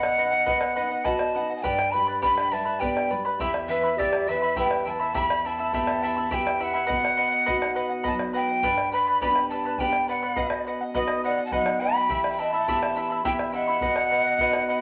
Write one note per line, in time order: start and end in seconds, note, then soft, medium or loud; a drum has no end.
0.00 1.60 B2 medium
0.00 0.17 B4 medium
0.00 0.18 D#5 medium
0.00 0.81 D#5 medium
0.00 0.18 F#5 medium
0.00 1.06 F#5 loud
0.00 bombo rim medium
0.18 0.46 D#4 medium
0.18 0.32 B4 medium
0.18 0.31 D#5 medium
0.18 0.30 F#5 medium
0.31 0.45 D#5 soft
0.31 0.46 F#5 medium
0.46 0.75 B4 medium
0.46 0.75 D#5 loud
0.46 0.76 F#5 medium
0.46 bombo low medium
0.61 bombo rim medium
0.76 1.05 D#4 medium
0.76 0.90 B4 medium
0.76 0.91 D#5 medium
0.76 0.89 F#5 medium
0.90 1.04 D#5 medium
0.90 1.05 F#5 medium
1.04 1.34 F#4 medium
1.04 1.33 B4 medium
1.04 1.56 D#5 medium
1.04 1.34 D#5 medium
1.04 1.35 F#5 medium
1.04 1.56 A5 medium
1.04 bombo low medium
1.19 bombo rim medium
1.35 1.63 D#4 medium
1.35 1.49 B4 medium
1.35 1.49 D#5 medium
1.35 1.49 F#5 medium
1.50 1.63 D#5 soft
1.50 1.63 F#5 medium
1.56 1.65 F#5 medium
1.56 1.63 A5 medium
1.62 3.36 G2 medium
1.62 1.93 G4 medium
1.62 1.92 B4 medium
1.62 1.94 D5 medium
1.62 1.92 D5 medium
1.62 1.92 G5 loud
1.62 1.91 G5 medium
1.62 1.93 B5 medium
1.62 bombo low medium
1.79 bombo rim medium
1.90 2.22 G3 medium
1.90 2.07 B4 medium
1.90 2.07 D5 medium
1.90 2.07 G5 medium
1.90 2.20 G5 medium
1.90 2.21 B5 medium
1.90 2.06 B5 medium
2.07 2.21 B4 soft
2.07 2.21 D5 soft
2.07 2.21 B5 medium
2.21 2.51 D4 medium
2.21 2.52 G4 medium
2.21 2.51 B4 medium
2.21 2.51 D5 medium
2.21 2.53 G5 medium
2.21 2.50 G5 medium
2.21 2.53 B5 medium
2.21 2.51 B5 medium
2.21 bombo low medium
2.38 bombo rim medium
2.51 2.80 G3 medium
2.51 2.65 B4 medium
2.51 2.65 D5 medium
2.51 2.82 E5 medium
2.51 2.66 G5 medium
2.51 2.81 A5 medium
2.51 2.64 B5 medium
2.65 2.80 B4 soft
2.65 2.80 D5 medium
2.65 2.80 B5 medium
2.79 3.10 B3 medium
2.79 3.10 G4 medium
2.79 3.09 B4 medium
2.79 3.10 D5 medium
2.79 3.09 D5 medium
2.79 3.09 G5 medium
2.79 3.08 G5 medium
2.79 3.09 B5 medium
2.79 bombo low medium
2.97 bombo rim medium
3.09 3.39 G3 medium
3.09 3.25 B4 medium
3.09 3.24 D5 medium
3.09 3.24 G5 medium
3.09 3.24 B5 medium
3.25 3.40 B4 medium
3.25 3.40 D5 medium
3.25 3.40 B5 medium
3.39 5.11 E2 medium
3.39 3.69 E4 loud
3.39 3.69 G4 medium
3.39 3.69 E5 medium
3.39 3.68 G5 medium
3.39 3.69 B5 loud
3.39 bombo rim soft
3.39 bombo low medium
3.54 bombo rim medium
3.68 3.97 E3 medium
3.68 3.83 E4 medium
3.68 3.99 B4 medium
3.68 3.99 E5 loud
3.68 3.82 E5 medium
3.68 3.84 G5 medium
3.68 3.82 B5 medium
3.83 3.98 E4 soft
3.83 3.98 E5 medium
3.83 3.98 B5 medium
3.98 4.27 B3 medium
3.98 4.27 E4 medium
3.98 4.30 G4 medium
3.98 4.28 G4 medium
3.98 4.29 D5 loud
3.98 4.28 E5 medium
3.98 4.26 G5 medium
3.98 4.28 B5 medium
3.98 bombo rim soft
3.98 bombo low medium
4.13 bombo rim medium
4.27 4.56 E3 medium
4.27 4.42 E4 medium
4.27 4.57 B4 medium
4.27 4.57 E5 loud
4.27 4.42 E5 medium
4.27 4.42 G5 medium
4.27 4.41 B5 medium
4.42 4.56 E4 soft
4.42 4.56 E5 soft
4.42 4.56 B5 medium
4.42 bombo rim soft
4.56 4.85 G3 medium
4.56 4.84 E4 medium
4.56 4.85 G4 medium
4.56 4.98 B4 medium
4.56 4.85 E5 medium
4.56 4.84 G5 medium
4.56 4.89 G5 medium
4.56 4.85 B5 medium
4.56 bombo low medium
4.71 bombo rim medium
4.85 5.14 E3 medium
4.85 5.00 E4 medium
4.85 4.99 E5 medium
4.85 5.00 G5 medium
4.85 5.18 A5 loud
4.85 4.98 B5 medium
5.00 5.14 E4 soft
5.00 5.14 E5 soft
5.00 5.14 B5 medium
5.14 6.86 E2 medium
5.14 5.44 E4 medium
5.14 5.44 G4 medium
5.14 5.44 E5 medium
5.14 5.43 G5 medium
5.14 5.44 B5 medium
5.14 5.47 B5 loud
5.14 bombo low medium
5.30 bombo rim medium
5.45 5.59 E4 medium
5.45 5.58 E5 medium
5.45 5.59 G5 medium
5.45 6.35 A5 loud
5.45 5.58 B5 medium
5.59 5.73 E4 soft
5.59 5.73 E5 medium
5.59 5.73 B5 medium
5.73 6.30 B3 medium
5.73 6.29 E4 soft
5.73 6.02 E4 medium
5.73 6.02 G4 medium
5.73 6.30 G4 medium
5.73 6.02 E5 medium
5.73 6.01 G5 medium
5.73 6.03 B5 medium
5.73 bombo low medium
5.87 bombo rim medium
6.03 6.17 E4 medium
6.03 6.17 E5 medium
6.03 6.17 G5 medium
6.03 6.15 B5 medium
6.17 6.30 E4 soft
6.17 6.30 E5 medium
6.17 6.31 B5 medium
6.31 6.88 B3 medium
6.31 6.59 E4 medium
6.31 6.88 E4 soft
6.31 6.60 G4 medium
6.31 6.88 G4 medium
6.31 6.59 E5 medium
6.31 6.58 G5 medium
6.31 6.63 G5 loud
6.31 6.59 B5 medium
6.31 bombo low medium
6.47 bombo rim medium
6.59 6.74 E4 medium
6.59 6.73 E5 medium
6.59 8.06 F#5 loud
6.59 6.74 G5 medium
6.59 6.72 B5 medium
6.74 6.86 E4 soft
6.74 6.87 E5 medium
6.74 6.89 B5 medium
6.86 7.16 B4 medium
6.86 7.16 D#5 medium
6.86 7.17 F#5 medium
6.86 bombo low medium
6.91 8.60 B2 medium
7.05 bombo rim medium
7.17 7.32 B4 medium
7.17 7.31 D#5 medium
7.17 7.29 F#5 medium
7.31 7.45 D#5 medium
7.31 7.46 F#5 medium
7.46 8.04 B3 medium
7.46 8.04 D#4 soft
7.46 8.04 F#4 medium
7.46 7.74 B4 medium
7.46 7.75 D#5 medium
7.46 7.75 F#5 loud
7.46 bombo low medium
7.62 bombo rim medium
7.75 7.90 B4 medium
7.75 7.89 D#5 medium
7.75 7.88 F#5 medium
7.90 8.03 D#5 soft
7.90 8.04 F#5 medium
8.04 8.62 F#3 medium
8.04 8.62 B3 medium
8.04 8.62 D#4 soft
8.04 8.32 B4 medium
8.04 8.33 D#5 medium
8.04 8.33 F#5 medium
8.04 8.13 A5 loud
8.04 bombo low medium
8.19 bombo rim medium
8.33 8.48 B4 medium
8.33 8.49 D#5 medium
8.33 8.47 F#5 medium
8.33 8.89 G5 loud
8.48 8.63 D#5 soft
8.48 8.63 F#5 medium
8.63 10.33 G2 medium
8.63 8.92 G4 medium
8.63 8.92 B4 medium
8.63 8.92 D5 medium
8.63 8.91 G5 medium
8.63 8.92 B5 medium
8.63 bombo low medium
8.78 bombo rim medium
8.92 9.07 B4 medium
8.92 9.06 D5 medium
8.92 9.07 G5 medium
8.92 9.19 B5 loud
8.92 9.06 B5 medium
9.07 9.21 B4 soft
9.07 9.21 D5 medium
9.07 9.21 B5 medium
9.21 9.78 B3 medium
9.21 9.78 D4 medium
9.21 9.50 G4 medium
9.21 9.78 G4 medium
9.21 9.50 B4 loud
9.21 9.50 D5 medium
9.21 9.49 G5 medium
9.21 9.48 B5 loud
9.21 9.51 B5 loud
9.21 bombo low medium
9.35 bombo rim medium
9.49 9.65 B4 medium
9.49 9.65 D5 medium
9.49 9.65 G5 medium
9.49 9.80 A5 medium
9.49 9.64 B5 medium
9.65 9.79 B4 soft
9.65 9.79 D5 medium
9.65 9.79 B5 medium
9.78 10.35 B3 medium
9.78 10.36 D4 soft
9.78 10.08 G4 medium
9.78 10.36 G4 medium
9.78 10.07 B4 medium
9.78 10.08 D5 medium
9.78 10.08 G5 medium
9.78 10.07 G5 medium
9.78 10.08 B5 medium
9.78 bombo low medium
9.93 bombo rim medium
10.08 10.22 B4 medium
10.08 10.22 D5 medium
10.08 10.62 F#5 medium
10.08 10.22 G5 medium
10.08 10.21 B5 medium
10.23 10.35 B4 soft
10.23 10.36 D5 soft
10.23 10.37 B5 medium
10.36 12.06 B2 medium
10.36 10.65 B4 medium
10.36 10.65 D#5 medium
10.36 10.66 F#5 medium
10.36 bombo low medium
10.50 bombo rim medium
10.65 10.80 B4 medium
10.65 10.81 D#5 medium
10.65 10.80 F#5 medium
10.65 bombo rim soft
10.81 10.94 D#5 soft
10.81 10.95 F#5 medium
10.94 11.50 B3 medium
10.94 11.50 D#4 soft
10.94 11.50 F#4 medium
10.94 11.23 B4 medium
10.94 11.21 B4 medium
10.94 11.21 D#5 medium
10.94 11.23 D#5 medium
10.94 11.24 F#5 medium
10.94 bombo rim soft
10.94 bombo low medium
11.08 bombo rim medium
11.24 11.38 B4 medium
11.24 11.44 D5 medium
11.24 11.38 D#5 medium
11.24 11.44 F#5 medium
11.24 11.37 F#5 medium
11.38 11.52 D#5 soft
11.38 11.52 F#5 medium
11.45 11.55 F#5 medium
11.45 11.53 A5 medium
11.52 12.08 F#3 medium
11.52 12.08 B3 medium
11.52 12.08 D#4 soft
11.52 11.80 B4 medium
11.52 11.80 D#5 medium
11.52 11.84 D#5 medium
11.52 11.82 F#5 loud
11.52 11.81 F#5 medium
11.52 bombo low medium
11.66 bombo rim medium
11.80 11.95 B4 medium
11.80 11.95 D#5 medium
11.80 11.94 F#5 medium
11.80 12.32 G5 loud
11.80 12.30 B5 loud
11.80 bombo rim soft
11.95 12.09 D#5 soft
11.95 12.09 F#5 medium
12.09 13.78 E3 medium
12.09 12.38 E4 medium
12.09 12.38 G4 medium
12.09 12.38 E5 medium
12.09 12.37 G5 medium
12.09 12.38 B5 medium
12.09 bombo low medium
12.24 bombo rim medium
12.30 12.42 G5 medium
12.30 12.40 B5 medium
12.38 12.53 E4 medium
12.38 12.57 D#5 medium
12.38 12.52 E5 medium
12.38 12.53 G5 medium
12.38 13.24 A5 loud
12.38 12.51 B5 medium
12.52 12.67 E4 soft
12.52 12.67 E5 medium
12.52 12.67 B5 medium
12.57 13.25 E5 medium
12.67 13.23 B3 medium
12.67 13.23 E4 soft
12.67 12.95 E4 medium
12.67 12.96 G4 medium
12.67 13.23 G4 medium
12.67 12.96 E5 medium
12.67 12.94 G5 medium
12.67 12.96 B5 medium
12.67 bombo low medium
12.83 bombo rim medium
12.96 13.10 E4 medium
12.96 13.10 E5 medium
12.96 13.10 G5 medium
12.96 13.09 B5 medium
13.10 13.24 E4 soft
13.10 13.24 E5 medium
13.10 13.24 B5 medium
13.24 13.80 B3 medium
13.24 13.52 E4 medium
13.24 13.80 E4 soft
13.24 13.53 G4 medium
13.24 13.80 G4 medium
13.24 13.52 E5 medium
13.24 13.33 E5 medium
13.24 13.31 G5 loud
13.24 13.51 G5 medium
13.24 13.52 B5 medium
13.24 bombo low medium
13.39 bombo rim medium
13.52 13.67 E4 medium
13.52 14.81 D#5 loud
13.52 13.67 E5 medium
13.52 14.81 F#5 loud
13.52 13.67 G5 medium
13.52 13.66 B5 medium
13.67 13.81 E4 soft
13.67 13.82 E5 soft
13.67 13.82 B5 medium
13.81 14.81 B2 medium
13.81 14.09 B4 medium
13.81 14.10 D#5 medium
13.81 14.10 F#5 medium
13.81 bombo low medium
13.96 bombo rim medium
14.11 14.25 B4 medium
14.11 14.25 D#5 medium
14.11 14.24 F#5 medium
14.25 14.39 D#5 medium
14.25 14.39 F#5 medium
14.38 14.81 B3 medium
14.38 14.81 D#4 soft
14.38 14.81 F#4 medium
14.38 14.67 B4 medium
14.38 14.68 D#5 loud
14.38 14.69 F#5 medium
14.38 bombo low medium
14.53 bombo rim medium
14.68 14.81 B4 medium
14.68 14.81 D#5 medium
14.68 14.81 F#5 medium